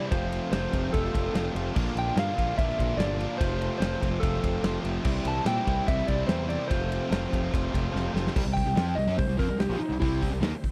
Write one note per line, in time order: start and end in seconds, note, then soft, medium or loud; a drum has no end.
0.00 0.10 C4 medium
0.00 0.10 E4 medium
0.00 0.11 E4 medium
0.00 0.11 D5 medium
0.10 0.39 F1 loud
0.10 0.50 F2 medium
0.10 0.51 C3 loud
0.10 0.52 F3 loud
0.10 1.74 A3 medium
0.10 0.52 A3 loud
0.10 1.73 C4 medium
0.10 0.52 C4 medium
0.10 1.73 F4 medium
0.10 0.54 F4 loud
0.10 1.74 C5 medium
0.10 0.50 C5 loud
0.10 kick loud
0.10 ride loud
0.32 ride medium
0.51 0.65 F1 medium
0.51 0.71 F2 medium
0.51 0.72 C3 medium
0.51 0.73 F3 loud
0.51 0.73 A3 medium
0.51 0.74 C4 medium
0.51 0.75 F4 loud
0.51 0.94 C5 medium
0.51 snare loud
0.51 ride loud
0.64 snare soft
0.72 0.87 F1 medium
0.72 0.91 F2 medium
0.72 0.91 C3 medium
0.72 0.92 F3 medium
0.72 0.92 A3 medium
0.72 0.92 C4 medium
0.72 0.94 F4 medium
0.72 kick medium
0.72 ride medium
0.92 1.08 F1 medium
0.92 1.32 F2 medium
0.92 1.33 C3 loud
0.92 1.34 F3 loud
0.92 1.34 A3 loud
0.92 1.35 C4 loud
0.92 1.36 F4 loud
0.92 1.51 A4 medium
0.92 kick loud
0.92 ride loud
1.05 snare soft
1.12 1.28 F1 medium
1.12 1.32 F2 medium
1.12 1.33 C3 medium
1.12 1.36 F3 medium
1.12 kick medium
1.12 ride medium
1.33 1.48 F1 medium
1.33 1.53 F2 medium
1.33 1.53 C3 medium
1.33 1.54 F3 medium
1.33 1.54 A3 medium
1.33 1.55 C4 medium
1.33 1.56 F4 medium
1.33 snare loud
1.33 ride loud
1.54 1.69 F1 medium
1.54 1.74 F2 medium
1.54 1.73 C3 medium
1.54 1.74 F3 medium
1.54 1.74 A3 medium
1.54 1.75 C4 medium
1.54 1.76 F4 medium
1.54 ride medium
1.74 1.90 A#1 medium
1.74 2.15 A#2 medium
1.74 2.15 D3 medium
1.74 2.78 F3 medium
1.74 3.38 A#3 medium
1.74 2.15 A#3 medium
1.74 3.38 D4 medium
1.74 2.16 D4 loud
1.74 3.38 F4 medium
1.74 2.18 F4 loud
1.74 3.38 D5 medium
1.74 kick loud
1.74 crash loud
1.95 2.09 A#1 medium
1.95 2.19 G5 medium
1.95 ride medium
2.16 2.30 G2 medium
2.16 2.35 A#2 medium
2.16 2.37 D3 medium
2.16 2.37 A#3 medium
2.16 2.38 D4 loud
2.16 2.39 F4 medium
2.16 2.57 F5 loud
2.16 snare loud
2.16 ride loud
2.28 snare soft
2.37 2.51 A#1 medium
2.37 2.56 A#2 medium
2.37 2.57 D3 medium
2.37 2.58 A#3 medium
2.37 2.58 D4 medium
2.37 2.59 F4 medium
2.37 kick medium
2.37 ride medium
2.57 2.72 A#1 loud
2.57 2.97 A#2 medium
2.57 2.98 D3 loud
2.57 2.99 A#3 loud
2.57 2.99 D4 loud
2.57 2.99 F4 loud
2.57 2.96 E5 loud
2.57 kick loud
2.57 ride loud
2.69 snare soft
2.77 2.93 A#1 medium
2.77 2.97 A#2 medium
2.77 2.98 F3 medium
2.77 2.97 A#3 medium
2.77 kick medium
2.77 ride medium
2.97 3.25 G1 loud
2.97 3.17 A#2 medium
2.97 3.18 D3 medium
2.97 3.39 F3 medium
2.97 3.18 A#3 medium
2.97 3.18 D4 loud
2.97 3.19 F4 loud
2.97 3.38 D5 loud
2.97 snare loud
2.97 ride loud
3.18 3.38 A#2 medium
3.18 3.39 D3 loud
3.18 3.39 A#3 medium
3.18 3.39 D4 loud
3.18 3.39 F4 medium
3.18 ride medium
3.38 3.68 F1 medium
3.38 3.79 F2 medium
3.38 3.79 C3 medium
3.38 3.80 F3 medium
3.38 3.81 A3 loud
3.38 5.03 A3 medium
3.38 5.03 C4 medium
3.38 3.82 C4 medium
3.38 5.03 F4 medium
3.38 3.82 F4 loud
3.38 3.77 C5 loud
3.38 5.03 C5 medium
3.38 kick loud
3.38 ride loud
3.62 ride medium
3.78 3.94 F1 medium
3.78 4.00 F2 medium
3.78 4.01 C3 medium
3.78 4.02 F3 medium
3.78 4.02 A3 medium
3.78 4.22 C5 medium
3.78 snare loud
3.78 ride loud
3.83 4.03 C4 medium
3.83 4.03 F4 medium
3.93 snare soft
4.01 4.16 F1 medium
4.01 4.20 F2 medium
4.01 4.21 C3 medium
4.01 4.21 F3 medium
4.01 4.22 A3 medium
4.01 4.23 C4 medium
4.01 4.22 F4 medium
4.01 kick medium
4.01 ride medium
4.20 4.36 F1 loud
4.20 4.62 F2 loud
4.20 4.62 C3 loud
4.20 4.63 F3 loud
4.20 4.63 A3 loud
4.20 4.65 C4 loud
4.20 4.64 F4 loud
4.20 4.79 A4 medium
4.20 kick loud
4.20 ride loud
4.34 snare soft
4.41 4.57 F1 medium
4.41 4.61 F2 medium
4.41 4.62 C3 medium
4.41 4.61 F3 loud
4.41 kick medium
4.41 ride medium
4.63 4.77 F1 loud
4.63 4.82 F2 medium
4.63 4.83 C3 medium
4.63 4.84 F3 medium
4.63 4.84 A3 loud
4.63 4.85 C4 loud
4.63 4.85 F4 loud
4.63 snare loud
4.63 ride loud
4.83 4.98 F1 medium
4.83 5.03 F2 medium
4.83 5.02 C3 medium
4.83 5.04 F3 medium
4.83 5.04 A3 loud
4.83 5.05 C4 loud
4.83 5.05 F4 loud
4.83 ride medium
5.04 5.19 C2 loud
5.04 5.43 C3 medium
5.04 5.44 E3 loud
5.04 6.68 G3 medium
5.04 5.45 G3 loud
5.04 6.68 C4 medium
5.04 5.46 C4 loud
5.04 6.68 E4 medium
5.04 5.46 E4 loud
5.04 6.68 C5 medium
5.04 kick loud
5.04 crash loud
5.25 5.39 C2 medium
5.25 5.47 A5 loud
5.25 ride medium
5.44 5.59 A#2 medium
5.44 5.64 C3 medium
5.44 5.65 E3 medium
5.44 5.66 G3 medium
5.44 5.67 C4 loud
5.44 5.67 E4 loud
5.44 5.89 G5 loud
5.44 snare loud
5.44 ride loud
5.66 5.81 C2 medium
5.66 5.85 C3 medium
5.66 5.86 E3 medium
5.66 5.86 G3 medium
5.66 5.87 C4 medium
5.66 5.87 E4 medium
5.66 kick medium
5.66 ride medium
5.86 6.01 C2 medium
5.86 6.25 C3 loud
5.86 6.26 E3 loud
5.86 6.26 G3 loud
5.86 6.28 C4 loud
5.86 6.28 E4 loud
5.86 6.07 E5 loud
5.86 kick loud
5.86 ride loud
5.99 snare soft
6.06 6.22 C2 medium
6.06 6.26 C3 medium
6.06 6.27 G3 medium
6.06 6.30 C4 loud
6.06 6.26 D5 medium
6.06 kick medium
6.06 ride medium
6.26 6.55 E2 medium
6.26 6.46 C3 medium
6.26 6.47 E3 loud
6.26 6.48 G3 medium
6.26 6.49 C4 loud
6.26 6.48 E4 loud
6.26 6.49 C5 medium
6.26 snare loud
6.26 ride loud
6.47 6.68 C3 medium
6.47 6.68 E3 medium
6.47 6.68 G3 medium
6.47 6.70 C4 medium
6.47 6.69 E4 medium
6.47 6.70 D5 medium
6.47 ride medium
6.68 6.98 F1 loud
6.68 7.08 F2 medium
6.68 7.09 C3 medium
6.68 7.10 F3 loud
6.68 8.33 A3 medium
6.68 7.10 A3 loud
6.68 8.33 C4 medium
6.68 7.11 C4 loud
6.68 8.33 F4 medium
6.68 7.89 C5 medium
6.68 8.33 C5 medium
6.68 kick loud
6.68 ride loud
6.72 7.11 F4 loud
6.92 ride medium
7.09 7.25 F1 medium
7.09 7.29 F2 medium
7.09 7.29 C3 medium
7.09 7.30 F3 medium
7.09 7.31 A3 medium
7.09 7.31 C4 medium
7.09 7.31 F4 medium
7.09 snare loud
7.09 ride loud
7.24 snare soft
7.30 7.46 F1 medium
7.30 7.50 F2 medium
7.30 7.50 C3 medium
7.30 7.51 F3 medium
7.30 7.51 A3 medium
7.30 7.52 C4 medium
7.30 7.53 F4 medium
7.30 kick medium
7.30 ride medium
7.51 7.67 F1 medium
7.51 7.91 F2 loud
7.51 7.92 C3 loud
7.51 7.92 F3 loud
7.51 7.92 A3 loud
7.51 7.93 C4 loud
7.51 7.93 F4 loud
7.51 kick loud
7.51 ride loud
7.72 7.87 F1 medium
7.72 7.91 F2 medium
7.72 7.93 C3 medium
7.72 7.92 F3 medium
7.72 kick medium
7.72 ride medium
7.92 8.07 F1 medium
7.92 8.12 F2 medium
7.92 8.12 C3 loud
7.92 8.13 F3 medium
7.92 8.14 A3 medium
7.92 8.14 C4 loud
7.92 8.14 F4 loud
7.92 snare medium
8.13 8.28 F1 medium
8.13 8.33 F2 medium
8.13 8.33 C3 medium
8.13 8.34 F3 medium
8.13 8.34 A3 medium
8.13 8.34 C4 medium
8.13 8.34 F4 medium
8.13 snare medium
8.27 snare medium
8.34 8.45 C2 loud
8.34 8.44 C3 medium
8.34 10.71 G3 medium
8.34 8.44 G3 loud
8.34 10.71 C4 medium
8.34 10.71 E4 medium
8.34 10.71 C5 medium
8.34 kick loud
8.34 crash loud
8.45 8.65 C2 medium
8.45 8.62 C3 medium
8.45 8.62 G3 medium
8.53 8.95 G5 medium
8.53 kick medium
8.53 open hi-hat medium
8.66 8.75 C2 medium
8.66 8.75 C3 medium
8.66 8.75 G3 medium
8.75 8.95 F2 loud
8.75 8.96 F3 loud
8.75 8.96 C4 loud
8.75 8.96 F4 loud
8.75 snare loud
8.75 open hi-hat medium
8.88 snare soft
8.95 9.06 C2 medium
8.95 9.06 C3 medium
8.95 9.07 G3 medium
8.95 9.16 D#5 medium
8.95 open hi-hat medium
9.07 9.17 F#2 medium
9.07 9.17 F#3 medium
9.07 9.17 C#4 loud
9.18 9.28 C2 medium
9.18 9.25 C3 medium
9.18 9.26 G3 medium
9.18 9.38 C5 medium
9.18 kick loud
9.18 open hi-hat medium
9.26 9.38 C2 medium
9.26 9.37 C3 medium
9.26 9.38 G3 medium
9.37 9.48 F2 loud
9.37 9.47 F3 medium
9.37 9.48 C4 loud
9.37 9.59 A#4 medium
9.37 kick medium
9.37 open hi-hat medium
9.49 9.58 C2 medium
9.49 9.57 C3 medium
9.49 9.58 G3 medium
9.58 9.69 C2 medium
9.58 9.68 C3 medium
9.58 9.69 G3 medium
9.58 9.79 G4 medium
9.58 snare loud
9.58 open hi-hat medium
9.69 9.79 A#1 loud
9.69 9.79 A#2 medium
9.69 9.79 F3 loud
9.79 9.99 D#4 medium
9.79 muted overdriven electric guitar stroke medium
9.79 muted fingered electric bass stroke soft
9.79 muted distorted electric guitar stroke medium
9.79 open hi-hat medium
9.89 10.00 C2 medium
9.89 9.98 C3 medium
9.89 9.99 G3 medium
10.00 10.30 C2 medium
10.00 10.30 C3 medium
10.00 10.30 G3 medium
10.00 10.31 C4 loud
10.00 10.20 E4 loud
10.00 kick loud
10.00 open hi-hat medium
10.23 kick medium
10.23 open hi-hat medium
10.31 10.41 C2 medium
10.31 10.40 C3 medium
10.31 10.41 G3 medium
10.41 10.51 D#2 loud
10.41 10.50 D#3 loud
10.41 10.51 A#3 loud
10.41 snare loud
10.41 open hi-hat medium
10.51 muted overdriven electric guitar stroke medium
10.51 muted fingered electric bass stroke soft
10.55 muted distorted electric guitar stroke medium
10.64 kick medium
10.64 open hi-hat medium